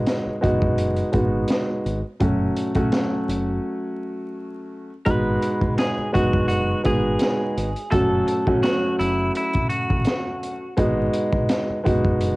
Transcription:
0.00 0.34 G#3 loud
0.00 0.34 B3 medium
0.00 0.34 D#4 medium
0.00 0.35 F#4 loud
0.06 snare loud
0.06 closed hi-hat medium
0.27 muted fingered electric bass stroke soft
0.41 1.03 F#1 medium
0.41 1.08 G#3 medium
0.41 1.08 B3 medium
0.41 1.08 D#4 medium
0.41 1.09 F#4 loud
0.41 kick medium
0.41 closed hi-hat medium
0.62 kick medium
0.78 closed hi-hat medium
0.96 closed hi-hat medium
1.12 1.44 G#1 medium
1.12 1.96 G#3 medium
1.12 1.96 B3 medium
1.12 1.96 D#4 medium
1.12 1.97 F#4 medium
1.12 kick medium
1.12 closed hi-hat medium
1.48 snare loud
1.48 closed hi-hat medium
1.85 2.02 G#1 medium
1.85 closed hi-hat medium
2.20 2.51 F#1 loud
2.20 2.71 F#3 medium
2.20 2.71 A3 medium
2.20 2.71 C#4 medium
2.20 2.71 F#4 loud
2.20 kick loud
2.20 closed hi-hat medium
2.57 closed hi-hat medium
2.75 4.89 F#3 medium
2.75 4.89 A3 medium
2.75 4.89 C#4 medium
2.75 4.89 F#4 loud
2.75 kick loud
2.75 closed hi-hat medium
2.92 snare loud
2.92 closed hi-hat medium
3.28 3.58 F#1 medium
3.28 closed hi-hat medium
5.05 5.36 G#1 loud
5.05 6.05 G#3 loud
5.05 6.05 B3 medium
5.05 6.06 D#4 medium
5.05 6.06 F#4 loud
5.05 5.74 B4 loud
5.05 kick loud
5.05 closed hi-hat loud
5.42 closed hi-hat medium
5.61 kick loud
5.78 6.11 G#4 medium
5.78 snare loud
5.78 closed hi-hat medium
5.98 muted fingered electric bass stroke soft
6.12 6.74 F#1 medium
6.12 6.79 G#3 medium
6.12 6.79 B3 medium
6.12 6.80 D#4 medium
6.12 6.46 F#4 medium
6.12 6.80 F#4 loud
6.12 kick medium
6.12 closed hi-hat medium
6.33 kick loud
6.48 6.81 F#4 medium
6.48 closed hi-hat medium
6.84 7.15 G#1 medium
6.84 7.67 G#3 medium
6.84 7.68 B3 medium
6.84 7.68 D#4 medium
6.84 7.68 F#4 medium
6.84 7.89 G#4 medium
6.84 kick medium
6.84 closed hi-hat medium
7.19 snare loud
7.19 closed hi-hat medium
7.57 7.73 G#1 loud
7.57 closed hi-hat medium
7.76 closed hi-hat medium
7.91 8.22 F#1 loud
7.91 8.42 F#3 medium
7.91 8.42 A3 medium
7.91 8.43 C#4 medium
7.91 8.43 F#4 loud
7.91 8.59 A4 loud
7.91 kick loud
7.91 closed hi-hat loud
8.28 closed hi-hat medium
8.46 10.60 F#3 medium
8.46 10.60 A3 medium
8.46 10.61 C#4 medium
8.46 10.61 F#4 loud
8.46 kick loud
8.63 8.95 F#4 medium
8.63 snare loud
8.63 closed hi-hat loud
8.99 9.29 F#1 loud
8.99 9.31 E4 medium
8.99 closed hi-hat medium
9.35 9.68 E4 medium
9.35 closed hi-hat medium
9.53 kick medium
9.53 closed hi-hat medium
9.70 10.73 F#4 medium
9.70 closed hi-hat medium
9.90 10.04 A1 loud
9.90 kick loud
10.05 snare loud
10.05 closed hi-hat medium
10.43 closed hi-hat medium
10.77 11.08 G#1 loud
10.77 11.77 G#3 loud
10.77 11.77 B3 medium
10.77 11.77 D#4 medium
10.77 11.77 F#4 loud
10.77 kick loud
10.77 closed hi-hat loud
11.13 closed hi-hat medium
11.33 kick loud
11.49 snare loud
11.49 closed hi-hat medium
11.70 muted fingered electric bass stroke soft
11.84 12.36 F#1 medium
11.84 12.36 G#3 medium
11.84 12.36 B3 medium
11.84 12.36 D#4 medium
11.84 12.36 F#4 loud
11.84 kick medium
11.84 closed hi-hat medium
12.05 kick medium
12.21 closed hi-hat medium

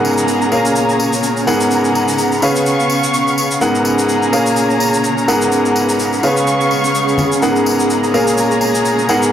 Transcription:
0.00 0.49 G#2 medium
0.00 0.49 B3 medium
0.00 0.49 G#4 medium
0.00 1.46 G#4 medium
0.00 4.33 G#4 medium
0.00 0.49 A#4 medium
0.00 0.49 F#5 medium
0.00 0.51 F#5 medium
0.00 1.46 A#5 medium
0.05 tambourine medium
0.14 2.42 A#5 medium
0.18 shaker medium
0.28 tambourine soft
0.28 shaker medium
0.42 shaker soft
0.52 1.45 A#2 medium
0.52 1.45 C#4 medium
0.52 1.87 C#4 medium
0.52 1.45 G#4 medium
0.52 1.45 A#4 medium
0.52 1.46 C#5 medium
0.52 1.45 F5 medium
0.52 tambourine medium
0.65 tambourine soft
0.65 shaker medium
0.76 tambourine medium
0.76 shaker medium
0.89 tambourine soft
0.89 shaker soft
1.00 tambourine medium
1.13 tambourine soft
1.13 shaker medium
1.23 tambourine medium
1.23 shaker medium
1.37 tambourine soft
1.37 shaker soft
1.47 2.40 G#2 medium
1.47 3.59 B3 medium
1.47 2.40 B3 medium
1.47 2.90 B3 medium
1.47 2.40 G#4 medium
1.47 2.41 G#4 medium
1.47 2.40 A#4 medium
1.47 2.40 F#5 medium
1.47 2.41 F#5 medium
1.47 2.41 A#5 medium
1.47 tambourine medium
1.60 tambourine soft
1.60 shaker medium
1.71 tambourine medium
1.71 shaker medium
1.85 tambourine soft
1.85 shaker soft
1.95 tambourine medium
2.08 tambourine soft
2.08 shaker medium
2.18 tambourine medium
2.18 shaker medium
2.32 tambourine soft
2.32 shaker soft
2.42 3.59 C#3 medium
2.42 3.59 C#4 medium
2.42 3.91 C#4 medium
2.42 3.59 G#4 medium
2.42 3.59 B4 medium
2.42 3.59 F5 medium
2.42 3.60 F5 medium
2.42 3.60 C#6 medium
2.42 tambourine medium
2.56 tambourine soft
2.56 shaker medium
2.66 tambourine medium
2.66 shaker medium
2.80 tambourine soft
2.80 shaker soft
2.90 tambourine medium
3.03 tambourine soft
3.03 shaker medium
3.14 tambourine medium
3.14 shaker medium
3.28 tambourine soft
3.28 shaker soft
3.38 tambourine loud
3.51 tambourine soft
3.51 shaker medium
3.61 4.30 G#2 medium
3.61 4.30 B3 medium
3.61 4.32 B3 medium
3.61 4.30 G#4 medium
3.61 5.26 G#4 medium
3.61 4.30 A#4 medium
3.61 4.30 F#5 medium
3.61 4.32 F#5 medium
3.61 6.21 A#5 medium
3.61 tambourine medium
3.61 shaker medium
3.75 tambourine soft
3.75 shaker soft
3.85 tambourine loud
3.95 6.23 A#5 medium
3.99 tambourine soft
3.99 shaker medium
4.09 tambourine medium
4.09 shaker medium
4.22 tambourine soft
4.22 shaker soft
4.33 5.26 A#2 medium
4.33 5.26 C#4 medium
4.33 5.68 C#4 medium
4.33 5.26 G#4 medium
4.33 5.26 A#4 medium
4.33 5.27 C#5 medium
4.33 5.26 F5 medium
4.33 tambourine medium
4.45 9.32 G#4 medium
4.45 tambourine soft
4.45 shaker medium
4.56 tambourine medium
4.56 shaker medium
4.70 tambourine soft
4.70 shaker soft
4.80 tambourine loud
4.93 tambourine soft
4.93 shaker medium
5.04 tambourine soft
5.04 shaker medium
5.18 tambourine soft
5.18 shaker soft
5.28 6.21 G#2 medium
5.28 6.21 B3 medium
5.28 6.71 B3 medium
5.28 8.11 B3 medium
5.28 6.21 G#4 medium
5.28 6.22 G#4 medium
5.28 6.21 A#4 medium
5.28 6.21 F#5 medium
5.28 6.22 F#5 medium
5.28 tambourine loud
5.42 tambourine soft
5.42 shaker medium
5.52 tambourine soft
5.52 shaker medium
5.65 tambourine soft
5.65 shaker soft
5.76 tambourine medium
5.89 tambourine soft
5.89 shaker medium
6.00 tambourine medium
6.00 shaker medium
6.13 tambourine soft
6.13 shaker soft
6.23 7.40 C#3 medium
6.23 7.72 C#4 loud
6.23 7.40 C#4 medium
6.23 7.40 G#4 medium
6.23 7.40 B4 medium
6.23 7.40 F5 medium
6.23 7.41 F5 medium
6.23 7.41 C#6 medium
6.23 tambourine medium
6.37 tambourine soft
6.37 shaker medium
6.42 7.42 B5 medium
6.47 tambourine soft
6.47 shaker medium
6.61 tambourine soft
6.61 shaker soft
6.71 tambourine medium
6.84 tambourine soft
6.84 shaker medium
6.95 tambourine soft
6.95 shaker medium
7.09 tambourine soft
7.09 shaker soft
7.18 tambourine medium
7.18 high conga medium
7.32 tambourine soft
7.32 shaker medium
7.42 8.11 G#2 medium
7.42 8.11 B3 medium
7.42 8.11 G#4 medium
7.42 9.32 G#4 medium
7.42 8.11 A#4 medium
7.42 8.11 F#5 medium
7.42 8.13 F#5 medium
7.42 9.32 A#5 medium
7.42 tambourine medium
7.42 shaker medium
7.56 tambourine soft
7.56 shaker soft
7.66 tambourine medium
7.76 9.32 A#5 medium
7.80 shaker medium
7.90 tambourine soft
7.90 shaker medium
8.04 tambourine soft
8.04 shaker soft
8.14 9.07 A#2 medium
8.14 9.32 C#4 medium
8.14 9.07 C#4 medium
8.14 9.07 G#4 medium
8.14 9.07 A#4 medium
8.14 9.08 C#5 medium
8.14 9.07 F5 medium
8.14 tambourine medium
8.28 tambourine soft
8.28 shaker medium
8.38 tambourine medium
8.38 shaker medium
8.51 tambourine soft
8.51 shaker soft
8.61 tambourine medium
8.75 tambourine soft
8.75 shaker medium
8.85 tambourine soft
8.85 shaker medium
8.99 tambourine soft
8.99 shaker soft
9.09 9.32 G#2 medium
9.09 9.32 B3 medium
9.09 9.32 G#4 medium
9.09 9.32 A#4 medium
9.09 9.32 F#5 medium
9.09 tambourine medium
9.23 tambourine soft
9.23 shaker medium

